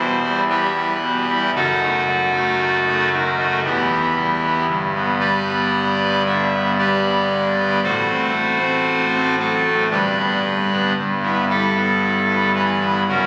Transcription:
Already playing: E1 E2 B2 C5
0.23 G3 E4
0.49 G3 E4 G4 B4
0.75 G3 E4
1.01 B2
1.28 G3 E4
1.55 F#1 F#2 D#4 F#4 A4
1.82 A3 D#4
2.07 F#3
2.34 A3 D#4
2.87 A3 D#4
3.12 D#3 F#4
3.38 A3 D#4
3.64 E1 E2 B3 E4 G4
3.91 B3
4.16 G3
4.42 B3
4.67 G1 G2
4.95 B3
5.19 G3 G4 B4 D5
5.47 B3
6.00 B3
6.26 D3 E5
6.52 B3
6.78 G3 G4 B4 D5
7.04 B3
7.30 D3
7.57 B3
7.82 A1 A2 F#4 A4 C5
8.09 A3 C4
8.34 A3
8.60 A3 C4
9.13 A3 C4
9.39 F#3 A4
9.65 A3 C4
9.90 G1 G2 D4 G4 B4
10.18 B3 D4
10.44 G3
10.72 B3 D4
10.97 G1 G2
11.22 B3 E4
11.50 G3 E4 A4
11.75 B3 E4
12.28 B3 E4
12.54 E3 B4
12.80 B3 E4
13.09 F#1 F#2 C#4 F#4 A#4

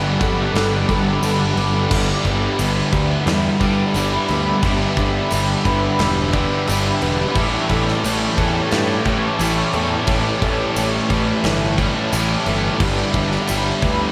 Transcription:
Already playing: G1 G2 D3 G3 B3 D4 G4 A4 F#5 B5
0.04 D3 G3
0.18 G1 G3 B3 D4 G4, kick, crash
0.22 A4, muted distorted electric guitar stroke
0.36 G3 B3 D4 G4
0.41 D3
0.54 G1 D4, snare, crash
0.71 G3 B3 D4 G4
0.89 G1 G2 D3 G3 B3 D4 G4 A4, kick, crash
1.22 G1 G2 D3 G3 B3 D4 G4, tambourine, crash
1.39 G3 B3 D4 G4
1.44 D3
1.56 G1 G2 D3 G3 B3 D4 G4, crash
1.74 D3 G3 B3 D4 G4
1.91 G1 G2 D3 E3 G3 B3 D4 G4 E5 B5, kick, crash
2.25 G1 G2 D3 G3 B3, kick, crash
2.59 G1 G2 D3 G3 D4, tambourine, crash
2.92 D2 G2 D3 G3 B3, kick, crash
3.26 E2 G2 D3 E3 G3, snare, crash
3.60 G2 D3 G3 B3 D4 G4, kick, crash
3.94 G1 G2 D3 E3 G3 B3 D4 G4, tambourine, crash
4.28 D2 G2 D3 G3 B3, crash
4.62 G1 G2 D3 E3 G3 B3 D4 G4, kick, crash
4.97 G1 G2 D3 G3 B3, kick, crash
5.30 G1 G2 D3 G3 D4, tambourine, crash
5.65 G1 G2 D3 G3 B3, kick, crash
5.99 E1 G2 D3 E3 G3, snare, crash
6.33 G2 D3 G3 B3 D4 G4, kick, crash
6.66 G1 G2 D3 E3 G3 B3 D4 G4, tambourine, crash
7.02 E1 G2 D3 G3 B3, crash
7.35 A1 A2 E3 G3 A3 C#4 G4 C#5 A5, kick, crash
7.69 A1 A2 E3 A3, kick, crash
7.88 snare
8.04 A1 A2 E3 A3 C#4, tambourine, crash
8.38 E2 A2 E3 A3, kick, crash
8.71 G2 A2 E3 A3, snare, crash
9.05 A2 E3 G3 A3 C#4 G4, kick, crash
9.39 A1 A2 E3 G3 A3 C#4, tambourine, crash
9.43 G4
9.73 E2 A2 E3 A3, crash
10.07 A1 A2 E3 G3 A3 C#4, kick, crash
10.11 G4
10.42 A1 A2 E3 A3, kick, crash
10.76 A1 A2 E3 A3 C#4, tambourine, crash
11.10 A1 A2 E3 A3, kick, crash
11.44 G1 A2 E3 A3, snare, crash
11.77 A2 E3 G3 A3 C#4 G4, kick, crash
12.12 A1 A2 E3 G3 A3 C#4 G4, tambourine, crash
12.46 G1 A2 E3 A3, crash
12.80 G1 G2 D3 E3 G3 B3 D4 G4 E5 B5, kick, crash
13.14 G1 G2 D3 G3 B3, kick, crash
13.32 snare
13.47 G1 G2 D3 G3 D4, tambourine, crash
13.82 D2 G2 D3 G3 B3, kick, crash

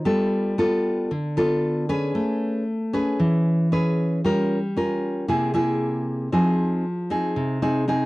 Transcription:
0.05 G3 B3 F4 A4
0.58 B3 F4 A4
1.11 D3
1.37 B3 F4 A4
1.89 C#4 G#4 B4
2.15 A3
2.93 C#4 G#4 B4
3.20 E3
3.72 C#4 G#4 B4
4.24 G3 C#4 F4 A#4
4.77 C#4 F4 A#4
5.28 C3 A#3 E4 G#4
5.54 A#3 E4 G#4
6.32 F3 C4 D#4 G#4
7.10 C4 D#4 G#4
7.36 C3
7.62 C4 D#4 G#4
7.88 C4 D#4 G#4

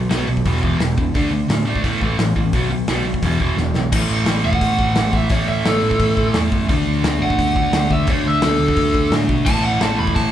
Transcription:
0.09 B1 B2 F#3 B3, snare, open hi-hat
0.28 B1 B2 F#3
0.37 kick
0.45 E1 E2 B2 E3, kick, open hi-hat
0.62 E2 B2 E3, kick
0.79 E1 E2 B2, snare, open hi-hat
0.97 E1 E2 B2, kick
1.14 D2 D3 A3 D4, kick, open hi-hat
1.32 D3 A3
1.49 A2 D3 A3, snare, open hi-hat
1.66 D3 A3 D4
1.75 kick
1.84 A1 A2 E3 A3, kick, open hi-hat
2.01 A1 A2 E3 A3, kick
2.18 A1 A2 E3, snare, open hi-hat
2.36 A1 A2 E3, kick
2.53 B1 B2 F#3 B3, kick, open hi-hat
2.70 B2 F#3
2.88 B1 B2 F#3 B3, snare, open hi-hat
3.04 B1 B2 F#3
3.14 kick
3.22 E1 E2 B2 E3, kick, open hi-hat
3.40 E2 B2 E3, kick
3.57 E1 E2 B2, snare
3.74 B1 E2 B2, snare
3.92 A1 A2 E3, kick, crash
3.96 A3
4.10 A1
4.26 A1, snare, open hi-hat
4.45 E1 F#5
4.53 kick
4.61 A1, kick, open hi-hat
4.78 A1, kick
4.95 A1, snare, open hi-hat
5.13 A1 E5, kick
5.29 A1 A2 E3 A3 C#5, kick, open hi-hat
5.48 A1 E5
5.65 A1 A4, snare, open hi-hat
5.83 A1
5.91 kick
6.00 A1, kick, open hi-hat
6.17 A1, kick
6.34 E2, snare, open hi-hat
6.52 F#2, kick
6.69 D2 D3 A3 D4, kick, open hi-hat
6.87 D2
7.03 D2, snare, open hi-hat
7.21 A1 F#5
7.30 kick
7.39 D2, kick, open hi-hat
7.56 D2, kick
7.72 D2, snare, open hi-hat
7.91 D2 E5, kick
8.07 D2 D3 A3 D4 C#5, kick, open hi-hat
8.25 D2 E5
8.42 D2 A4, snare, open hi-hat
8.60 D2
8.68 kick
8.76 D2, kick, open hi-hat
8.94 D2, kick
9.11 A2, snare, open hi-hat
9.29 B2, kick
9.45 A1 A2 E3 A3 A5, kick, crash
9.64 A1 F#5
9.80 A1 A5, snare, open hi-hat
9.98 E1 B5
10.07 kick
10.15 A1 A5, kick, open hi-hat

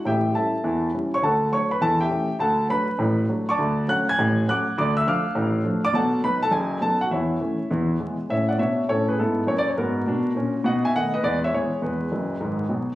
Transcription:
0.05 A1 A2 G4 E5 G5
0.34 G3 C#4 E4 A4 E5 A5
0.64 E2 E3
0.94 G3 C#4 E4
1.14 C#5 C#6
1.22 D2 D3 A4 F#5 A5
1.52 F#3 A3 D4 C#5 C#6
1.71 B4 B5
1.81 E2 E3 A4 A5
2.01 G4 E5 G5
2.10 E3 A3 C#4
2.39 D2 D3 A4 F#5 A5
2.69 F#3 A3 D4 B4 B5
2.99 A1 A2
3.29 F#3 A3 D4
3.49 D5 A5 C#6 D6
3.58 D2 D3
3.88 F#3 A3 C#4 F#5 F#6
4.09 G#5 G#6
4.18 A1 A2
4.48 F#3 A3 C#4 F#5 D6 F#6
4.77 D2 D3 D5 D6
4.97 E5 E6
5.06 F3 A3 D4 F5 D6 F6
5.35 A1 A2
5.64 F3 A3 D4
5.85 D5 D6
5.93 B1 B2 A4 F#5 A5
6.23 F#3 B3 D#4 B4 B5
6.43 A4 A5
6.51 F#1 F#2 G#4 G#5
6.81 F#3 B3 D#4 A4 A5
7.01 F#4 F#5
7.11 E2 E3 E4 C#5 E5
7.40 E3 A3 C#4
7.71 E2 E3
8.00 E3 G#3 B3
8.30 A2 C#4 C#5 E5
8.48 D5 F#5
8.58 B2 D4 C#5 E5
8.89 A2 C#4 A4 C#5
9.08 G#4 B4
9.19 G#2 B3 E4 A4
9.47 F#2 A#3 C#5
9.58 D5
9.68 C#5
9.77 G#2 B3 F#4 A#4
10.06 B2 D4
10.35 A#2 C#4
10.64 B2 D#4 D#5 F#5
10.85 E5 G#5
10.95 D#3 A3 B3 D#5 F#5
11.14 B4 D#5
11.23 E2 G#3 B4 D5
11.44 C#5 E5
11.54 E3 G#3 B3 G#4 C#5
11.82 E2 G#3 G#4 B4
12.12 F#1 F#2
12.40 G#1 G#2
12.69 B1 B2

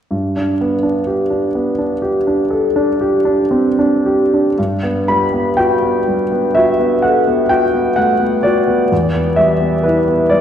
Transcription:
0.11 G2
0.36 D4
0.61 B3
0.83 D4
1.07 G4
1.30 D4
1.55 B3
1.79 D4
2.02 G4
2.27 D4
2.50 A4
2.76 D4
3.01 G4
3.25 D4
3.51 C4
3.79 D4
4.06 G4
4.34 D4
4.58 G2
4.83 B3
5.08 G3 B5
5.33 B3
5.57 F#4 G5
5.82 B3
6.07 G3
6.32 B3
6.55 F#4 E5
6.79 B3
7.02 A4 F#5
7.27 B3
7.49 F#4 G5
7.74 B3
7.96 A3 F#5
8.20 B3
8.43 F#4 D5
8.67 B3
8.92 E2
9.15 B3
9.36 G3 E5
9.60 B3
9.83 E4 B4
10.08 B3
10.30 G3 D5

